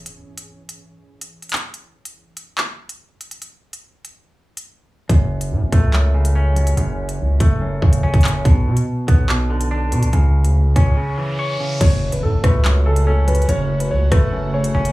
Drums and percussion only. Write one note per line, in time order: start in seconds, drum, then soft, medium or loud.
0.06 closed hi-hat medium
0.38 closed hi-hat medium
0.69 closed hi-hat medium
1.21 closed hi-hat loud
1.42 closed hi-hat soft
1.49 clap loud
1.49 closed hi-hat medium
1.56 closed hi-hat medium
1.74 closed hi-hat medium
2.05 closed hi-hat medium
2.37 closed hi-hat medium
2.58 clap loud
2.89 closed hi-hat loud
3.21 closed hi-hat medium
3.31 closed hi-hat medium
3.42 closed hi-hat medium
3.73 closed hi-hat medium
4.05 closed hi-hat medium
4.57 closed hi-hat loud
5.09 kick loud
5.09 closed hi-hat medium
5.41 closed hi-hat medium
5.72 kick medium
5.72 closed hi-hat medium
5.93 clap loud
6.25 closed hi-hat loud
6.56 closed hi-hat medium
6.67 closed hi-hat medium
6.77 closed hi-hat medium
7.09 closed hi-hat medium
7.40 kick medium
7.40 closed hi-hat medium
7.82 kick medium
7.93 closed hi-hat medium
8.14 kick medium
8.14 closed hi-hat soft
8.21 clap loud
8.21 closed hi-hat medium
8.28 closed hi-hat medium
8.45 kick loud
8.45 closed hi-hat medium
8.77 closed hi-hat medium
9.08 kick medium
9.08 closed hi-hat medium
9.29 clap loud
9.61 closed hi-hat loud
9.92 closed hi-hat medium
10.03 closed hi-hat medium
10.13 closed hi-hat medium
10.45 closed hi-hat medium
10.76 kick medium
10.76 closed hi-hat medium
11.81 kick loud
11.81 closed hi-hat medium
11.81 crash loud
12.12 closed hi-hat medium
12.44 kick medium
12.44 cross-stick loud
12.44 closed hi-hat medium
12.65 clap loud
12.96 closed hi-hat loud
13.28 closed hi-hat medium
13.35 closed hi-hat medium
13.42 closed hi-hat soft
13.49 closed hi-hat medium
13.80 closed hi-hat medium
14.12 kick medium
14.12 cross-stick loud
14.12 closed hi-hat medium
14.64 closed hi-hat medium
14.85 closed hi-hat medium